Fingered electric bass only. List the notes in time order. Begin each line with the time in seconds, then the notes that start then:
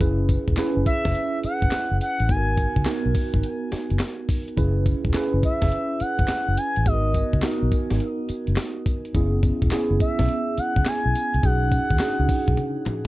0.01 F#1
0.48 E1
0.77 F#1
1.06 F#1
1.44 muted fingered electric bass stroke
1.62 G#1
1.73 muted fingered electric bass stroke
1.91 F#1
2.20 A1
2.76 C#2
3.06 B1
3.34 G#1
3.73 muted fingered electric bass stroke
3.91 F#1
4.58 F#1
5.05 E1
5.34 F#1
5.62 F#1
6.01 muted fingered electric bass stroke
6.19 G#1
6.29 muted fingered electric bass stroke
6.48 F#1
6.77 A1
6.86 G#1
7.33 C#2
7.63 B1
7.91 G#1
8.30 muted fingered electric bass stroke
8.48 F#1
9.15 F#1
9.62 E1
9.91 F#1
10.20 B1
10.58 muted fingered electric bass stroke
10.77 C#2
10.87 muted fingered electric bass stroke
11.06 B1
11.34 C2
11.44 B1
11.91 D#2
12.19 C#2
12.48 B1
12.87 muted fingered electric bass stroke